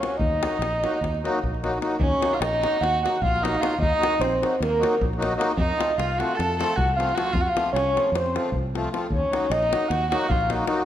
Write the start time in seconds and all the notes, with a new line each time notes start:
0.00 F#3 A#3 C#4 F#4 C#5, davul high
0.17 D#2 D#4 D#5, davul low
0.40 F#3 A#3 D#4 F#4, davul high
0.53 davul high
0.59 A#1, davul high
0.82 F#3 A#3 D#4 F#4, davul high
1.01 D#2, davul high, davul low
1.14 davul high
1.22 F#3 A#3 D#4 F#4, davul high
1.35 davul high
1.43 A#1, davul low
1.54 davul high
1.62 F#3 A#3 D#4 F#4, davul high
1.74 davul high
1.79 F#3 A#3 D#4 F#4, davul high
1.92 davul high
1.99 D#2 C#4 C#5, davul low
2.20 F#3 A#3 D#4 F#4, davul high
2.33 F4 F5
2.40 A#1 D#4 D#5, davul high
2.53 davul high
2.60 F#3 A#3 D#4 F#4, davul high
2.81 D#2 F#4 F#5, davul high
3.01 F#3 A#3 D#4 F#4 F#5
3.06 davul high
3.16 davul high
3.22 A#1 F4 F5, davul low
3.36 F#3, davul high
3.40 A#3 D#4 F#4 D#5
3.45 davul high
3.55 F#3, davul high
3.59 A#3 D#4 F4 F#4 F5
3.63 davul high
3.73 davul high
3.78 D#2 D#4 D#5, davul low
3.98 F#3 A#3 D#4 F#4
4.03 davul high
4.19 A#1 C5, davul high
4.24 C4
4.32 davul high
4.40 F#3 A#3 D#4 F#4, davul high
4.60 D#2 A#3 A#4, davul high
4.78 F#3 A#3 D#4 F#4
4.83 davul high
4.93 davul high
5.01 A#1, davul low
5.13 F#3 A#3, davul high
5.18 D#4 F#4
5.22 davul high
5.32 F#3, davul high
5.36 A#3 D#4 F#4
5.41 davul high
5.51 davul high
5.57 F2 D#4 D#5, davul low
5.76 F3 A3 C4 F4
5.81 davul high
5.98 C2 F4 F5, davul high
6.11 davul high
6.17 F3 A3 C4 F4 F#4 F#5, davul high
6.35 F2 A4 A5
6.40 davul high
6.58 F3 A3 C4 F4 A4 A5, davul high
6.70 davul high
6.76 C2 F#4 F#5, davul low
6.89 davul high
6.95 F3 A3 C4 F4 F5
7.00 davul high
7.09 davul high
7.14 F3 A3 C4 F4 F#4 F#5, davul high
7.27 davul high
7.32 F2 F4 F5, davul low
7.41 F#4 F#5
7.46 F4 F5, davul high
7.54 F3 A3 C4 F4, davul high
7.73 C2 C#4 C#5, davul high
7.95 F3 A3 C4 F4, davul high
8.12 F2 C4 C5, davul high
8.26 davul high
8.34 F3 A3 C4 F4, davul high
8.52 C2, davul low
8.73 F3 A3 C4 F4, davul high
8.85 davul high
8.91 F3 A3 C4 F4, davul high
9.10 D#2 C#5, davul low
9.14 C#4
9.30 F#3 A#3 D#4 F#4, davul high
9.50 A#1 D#4 D#5, davul high
9.63 davul high
9.70 F#3 A#3 D#4 F#4, davul high
9.88 D#2 F#4 F#5, davul high
10.10 F#3 A#3 D#4 F#4 F#5, davul high
10.21 davul high
10.29 A#1 F4 F5, davul low
10.41 davul high
10.49 F#3 A#3 D#4 F#4, davul high
10.65 F#3 A#3 D#4 F#4, davul high
10.77 davul high